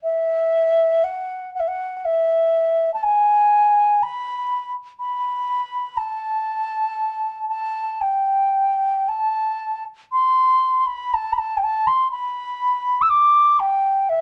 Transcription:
0.03 E5
1.04 F#5
1.55 F#5
1.60 E5
1.68 F#5
1.97 F#5
2.05 E5
2.94 A5
3.03 G#5
4.03 B5
5.00 B5
5.97 A5
7.49 A5
8.01 G5
9.09 A5
10.12 C6
10.80 C6
10.87 B5
11.14 A5
11.33 B5
11.38 A5
11.57 G5
11.64 A5
11.87 C6
12.12 B5
13.02 E6
13.10 D6
13.60 G5
14.09 E5

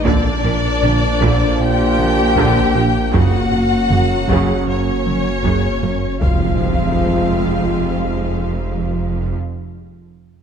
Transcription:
0.05 A#1 A#2 D3 F3 A#3 D4 F4 A#4 D5, taiko
0.44 A#1 A#2 F3 A#4
0.82 A#1 A#2 D3 D4, taiko mid
1.21 A#1 A#2 D3 A#3, taiko
1.59 A#2 G4 G5
1.98 A#3, taiko mid
2.37 A#1 A#2 D3 A#3, taiko
2.75 A#1 A#2 F3 D4
3.12 F#1 F#2 C#3 F#3 C#4 F#4 F#5, taiko
3.52 F#1 F#2 F#3 F#4
3.90 F#1 F#2 C#3 A#3, taiko mid
4.29 F#1 F#2 C#3 F#3, taiko
4.67 F#2 C#4 C#5
5.06 F#3, taiko mid
5.44 F#1 F#2 C#3 F#3, taiko
5.83 F#1 F#2 F#3 A#3
6.21 F1 F2 C3 F3 G#3 C4 F4 C5 F5, taiko, impact

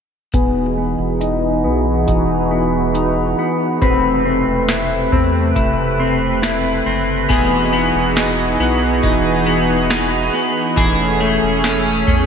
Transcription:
0.34 E1 E3 B3 D#4 F#4 G#4 B4, kick, closed hi-hat
0.78 B3
0.99 E1
1.20 D#4, closed hi-hat
1.64 B1 B3
2.07 E1 D#4, kick, closed hi-hat
2.51 B3
2.94 D#4, closed hi-hat
3.39 B3
3.82 E1 C3 A3 C4 B4, kick, closed hi-hat
4.25 C4
4.47 E1
4.69 E4, snare, closed hi-hat
5.12 E2 C4, kick
5.56 E1 E4, kick, closed hi-hat
6.00 C4
6.42 E4, snare, closed hi-hat
6.86 F#1 C4
7.29 E1 E3 B3 D#4 F#4 G#4, kick, closed hi-hat
7.73 B3
7.95 E1
8.16 D#4, snare, closed hi-hat
8.60 B1 B3
9.03 E1 D#4, kick, closed hi-hat
9.46 B3
9.90 D#4, snare, closed hi-hat
10.33 B3
10.76 E1 E3 A3 C#4 G#4, kick, closed hi-hat
11.20 A3
11.43 E1
11.64 C#4, snare, closed hi-hat
12.07 E2 A3, kick

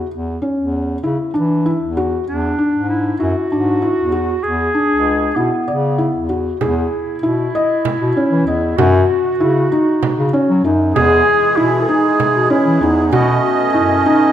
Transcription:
0.11 E2
0.42 C#4
0.59 E2
1.03 C#3 E4
1.34 E3 D4
1.66 E4
1.81 E2
1.97 F#4
2.27 E2 D4
2.58 D4
2.73 G#2
2.89 E4
3.20 F#2 E4 F#4
3.50 G#2 D4
3.82 E4
3.97 E2
4.12 F#4
4.43 E2 G#4
4.75 D4
4.90 C#2
5.36 B2 B3 E4
5.68 C#3 D5
5.98 E4
6.14 E2
6.29 F#4
6.60 E2 E4 G#4, frame drum
7.22 B2 E4
7.55 D#5
7.85 frame drum
8.00 B2
8.16 C#4
8.30 E3
8.46 E2 D#5
8.77 F#2 F#4, frame drum
9.40 C#3 E4
9.72 D#4
10.03 frame drum
10.17 C#3
10.33 C#4
10.49 F#3
10.64 F#2 D#4
10.94 E2 E3 G#3 G#4, frame drum
11.57 B2 E4
11.81 A4
11.88 D#4 G#4
12.20 frame drum
12.35 B2
12.50 C#4 E4
12.65 E3
12.81 E2 D#4
13.04 D#4
13.11 B2 A3 C#4 F#4 D#5, frame drum
13.74 F#2 E4, frame drum
14.06 D#4

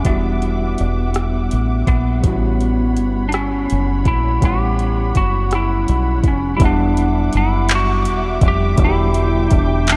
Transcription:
Already playing: G3 E5 F#5 D6
0.03 E1 G3 B3 D4, kick, closed hi-hat
0.07 E4 F#4
0.42 closed hi-hat
0.78 E1, closed hi-hat
1.14 cross-stick, closed hi-hat
1.51 A1, closed hi-hat
1.87 A#1 B3, kick, closed hi-hat
2.21 A1 G3 B3 C#4 C#5 B5, kick, closed hi-hat
2.25 E4 F#4
2.61 closed hi-hat
2.97 G1, closed hi-hat
3.29 D4, closed hi-hat
3.34 C#4, cross-stick
3.70 F#1, closed hi-hat
4.05 A#1 E4, kick, closed hi-hat
4.41 A1 G3 B3 C#4 E4 F#5, kick, closed hi-hat
4.45 G4 F#5
4.79 closed hi-hat
5.15 F#1 F#4, kick, closed hi-hat
5.51 cross-stick, closed hi-hat
5.55 E4
5.88 B1, closed hi-hat
6.24 F1, kick, closed hi-hat
6.28 C#4
6.57 G3 B3 E4 E5 F#5 D6, kick, closed hi-hat
6.61 E1 D4 E4 F#5
6.65 D4
6.97 closed hi-hat
7.33 F#1, closed hi-hat
7.37 E4
7.69 clap, closed hi-hat
7.75 F#4
8.05 E1, closed hi-hat
8.41 F1, kick, closed hi-hat
8.48 G4
8.76 E1 D3 G3 B3 G5, kick, closed hi-hat
8.81 E4 F#4
8.89 G4
9.14 closed hi-hat
9.51 E1, kick, closed hi-hat
9.55 D4
9.87 clap, closed hi-hat
9.92 D4

